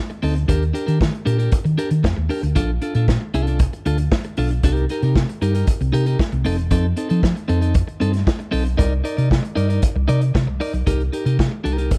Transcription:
0.10 muted clean electric guitar stroke, closed hi-hat
0.23 D2 C4 D#4 A4, open hi-hat
0.36 muted clean electric guitar stroke, closed hi-hat
0.48 D#2 D4 G4 A#4, kick, closed hi-hat
0.62 closed hi-hat
0.73 D4 G4 A#4, closed hi-hat
0.86 D#3 D4 G4 A#4, closed hi-hat
1.00 muted clean electric guitar stroke, kick, snare
1.12 muted clean electric guitar stroke, closed hi-hat
1.25 A#2 D4 G4 A#4, closed hi-hat
1.38 D4 G4 A#4, closed hi-hat
1.52 kick, closed hi-hat
1.65 D#3, muted clean electric guitar stroke, closed hi-hat
1.78 D4 G4 A#4, closed hi-hat
1.91 D#3, muted clean electric guitar stroke, closed hi-hat
2.03 F2, muted clean electric guitar stroke, kick, snare
2.17 D#2, muted clean electric guitar stroke
2.29 D4 G4 A#4, open hi-hat
2.43 D2, muted clean electric guitar stroke, closed hi-hat
2.55 A#1 D4 F4 A4, kick, closed hi-hat
2.82 D4 F4 A4, closed hi-hat
2.95 A#2 D4 F4 A4, closed hi-hat
3.08 muted clean electric guitar stroke, kick, snare
3.21 muted clean electric guitar stroke
3.34 C2 D4 F4 A4, closed hi-hat
3.47 D4 F4 A4, closed hi-hat
3.59 kick, closed hi-hat
3.73 muted clean electric guitar stroke, closed hi-hat
3.86 D2 D4 F4 A4, closed hi-hat
3.98 muted clean electric guitar stroke, closed hi-hat
4.12 muted clean electric guitar stroke, kick, snare
4.24 muted clean electric guitar stroke, closed hi-hat
4.37 B1 D4 F4 A4, open hi-hat
4.51 muted clean electric guitar stroke, closed hi-hat
4.63 C2 D#4 G4 A#4, kick, closed hi-hat
4.76 closed hi-hat
4.89 D#4 G4 A#4, closed hi-hat
5.02 C3 D#4 G4 A#4, closed hi-hat
5.15 muted clean electric guitar stroke, kick, snare
5.29 muted clean electric guitar stroke, closed hi-hat
5.42 G2 D#4 G4 A#4, closed hi-hat
5.55 D#4 G4 A#4, closed hi-hat
5.67 muted clean electric guitar stroke, kick, closed hi-hat
5.81 C2, muted clean electric guitar stroke, closed hi-hat
5.93 C3 D#4 G4 A#4, closed hi-hat
6.06 D#4 G4 A#4, closed hi-hat
6.19 muted clean electric guitar stroke, kick, snare
6.32 C2, muted clean electric guitar stroke, closed hi-hat
6.45 F1 C4 D#4 A4, open hi-hat
6.58 E1, muted clean electric guitar stroke, closed hi-hat
6.71 F2 C4 D#4 A4, kick, closed hi-hat
6.97 C4 D#4 A4, closed hi-hat
7.09 F3 C4 D#4 A4, closed hi-hat
7.23 kick, snare
7.35 muted clean electric guitar stroke, closed hi-hat
7.48 F2 C4 D#4 A4, closed hi-hat
7.61 C4 D#4 A4, closed hi-hat
7.74 kick, closed hi-hat
7.88 muted clean electric guitar stroke, closed hi-hat
8.00 G2 C4 D#4 A4, closed hi-hat
8.13 muted clean electric guitar stroke, snare, closed hi-hat
8.26 muted clean electric guitar stroke, kick, snare
8.39 muted clean electric guitar stroke, closed hi-hat
8.51 B1 C4 D#4 A4, open hi-hat
8.65 muted clean electric guitar stroke, closed hi-hat
8.77 C2 D#4 A#4 D5, kick, closed hi-hat
9.04 D#4 A#4 D5, closed hi-hat
9.17 C3 D#4 A#4 D5, closed hi-hat
9.31 kick, snare
9.43 muted clean electric guitar stroke, closed hi-hat
9.55 G2 D#4 A#4 D5, closed hi-hat
9.69 D#4 A#4 D5, closed hi-hat
9.82 kick, closed hi-hat
9.96 C2, muted clean electric guitar stroke
10.08 C3 D#4 A#4 D5, closed hi-hat
10.21 muted clean electric guitar stroke, closed hi-hat
10.34 C3, muted clean electric guitar stroke, kick, snare
10.47 C2, muted clean electric guitar stroke
10.60 D#4 A#4 D5, open hi-hat
10.73 B1, muted clean electric guitar stroke, closed hi-hat
10.87 C2 D#4 G4 A#4, kick, closed hi-hat
11.00 closed hi-hat
11.13 D#4 G4 A#4, closed hi-hat
11.25 C3 D#4 G4 A#4, closed hi-hat
11.39 muted clean electric guitar stroke, kick, snare
11.51 muted clean electric guitar stroke
11.64 C2 D#4 G4 A#4, closed hi-hat
11.78 D#4 G4 A#4, closed hi-hat
11.91 kick, closed hi-hat

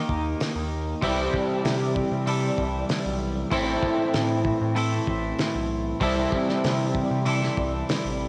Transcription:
Already playing: D#3 A#3 D#4 G4
0.09 D#2, kick
0.40 snare, open hi-hat
0.56 D#2
1.02 C2 C3 E3 G3 C4 E4 G4 A4, kick, open hi-hat
1.34 kick
1.65 C3, snare, open hi-hat
1.96 kick
2.12 C3
2.26 C3 E3 G3 E4 A4, open hi-hat
2.58 C2, kick
2.89 snare, open hi-hat
3.06 B1
3.51 A1 A2 E3 C4 E4 A4, kick, open hi-hat
3.83 kick
4.14 A2, snare, open hi-hat
4.45 kick
4.61 A2
4.75 A2 E3 C4 E4 A4, open hi-hat
5.07 A1, kick
5.39 snare, open hi-hat
5.55 B1
6.00 C2 C3 E3 G3 C4 E4 A4, kick, open hi-hat
6.32 kick
6.49 snare
6.64 C3, snare, open hi-hat
6.95 kick
7.11 C3
7.25 C3 E3 G3 E4 A4, open hi-hat
7.43 snare
7.57 C2, kick
7.89 snare, open hi-hat
8.05 A1

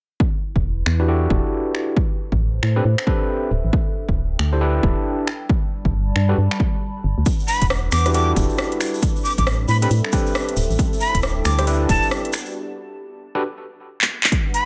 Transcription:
0.20 E4, kick
0.48 B4
0.56 E1, kick
0.86 E2, finger snap
1.00 D4 E4 F#4 G4 B4
1.08 D4 E4 F#4 G4 A4
1.30 E1, kick
1.75 finger snap
1.96 A4, kick
2.16 C5 E5
2.32 A1, kick
2.63 A2, finger snap
2.76 C4 D4 G4 A4 B4
2.85 A2
2.98 finger snap
3.07 C4 D4 G4 A4 B4, kick
3.50 D1 D4
3.64 A1
3.73 kick
3.98 G5
4.09 D1, kick
4.39 D2, finger snap
4.53 D4 E4 G4 A4 C5
4.61 D4 E4 G4 A4 B4
4.83 D1, kick
5.27 G3, finger snap
5.44 D5
5.49 kick
5.54 A5 B5
5.85 G1, kick
6.16 G2, finger snap
6.29 D4 F#4 G4 A4 B4
6.38 G2
6.51 finger snap
6.60 kick
7.04 G1
7.18 D2
7.26 G3 D4 E4 B4 F#5, kick, closed hi-hat, shaker
7.40 shaker
7.48 B4 B5, shaker
7.62 E1, kick, closed hi-hat, shaker
7.70 cross-stick, shaker
7.92 E2 D6, finger snap, shaker
8.06 D4 E4 F#4 G4 B4, cross-stick, closed hi-hat, shaker
8.14 D4 E4 F#4 G4 A4 D6, closed hi-hat, shaker
8.36 E1, kick, closed hi-hat, shaker
8.49 shaker
8.58 cross-stick, shaker
8.72 closed hi-hat
8.80 finger snap, closed hi-hat, shaker
8.94 shaker
9.02 C4 A4, kick, closed hi-hat, shaker
9.16 shaker
9.24 D6, shaker
9.29 E5
9.38 A1 D6, kick, closed hi-hat, shaker
9.46 cross-stick, shaker
9.68 A2 B5, shaker
9.82 C4 D4 G4 A4 B4 B5, closed hi-hat, shaker
9.90 A2, closed hi-hat, shaker
10.04 finger snap
10.12 C4 D4 G4 A4 B4, kick, closed hi-hat, shaker
10.26 shaker
10.35 cross-stick, shaker
10.49 closed hi-hat
10.57 D1 D4 E4 A4, closed hi-hat, shaker
10.70 A1, shaker
10.79 kick, closed hi-hat, shaker
10.93 G5, shaker
11.00 B5, shaker
11.14 D1, kick, closed hi-hat, shaker
11.22 cross-stick, shaker
11.45 D2 D6, finger snap, shaker
11.59 D4 E4 G4 A4 C5, cross-stick, closed hi-hat, shaker
11.67 D4 E4 G4 A4 B4, closed hi-hat, shaker
11.89 D1 A5, kick, closed hi-hat, shaker
12.02 shaker
12.11 cross-stick, shaker
12.25 closed hi-hat
12.33 B3 D4 F#4 G4, finger snap, closed hi-hat, shaker
12.46 D5, shaker
13.35 D4 F#4 G4 A4 B4
14.01 clap
14.23 clap
14.32 G3 D4 B4 F#5, kick, closed hi-hat
14.54 B5, open hi-hat

